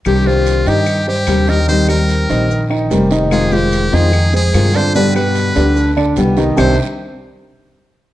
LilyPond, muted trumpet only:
\new Staff \with { instrumentName = "Muted trumpet" } { \time 4/4 \key c \minor \tempo 4 = 148 g'8 f'4 g'4 g'4 bes'8 | c''8 bes'2 r4. | aes'8 g'4 aes'4 aes'4 c''8 | b'8 b'2 r4. |
c''8 r2. r8 | }